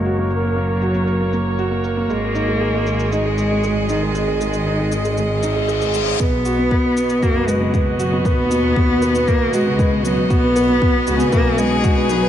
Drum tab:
SH |x-x---xxx-x-x-x-|x-x---xxx-x-x-x-|x-xx--xxx-x-xxx-|x-x---xxx-x-x-x-|
BD |----------------|----------------|----------------|o---o---o---o---|

SH |x-x---xxx-x-x-x-|x-x---xxx-x-x-x-|
BD |o---o---o---o---|o---o---o---o---|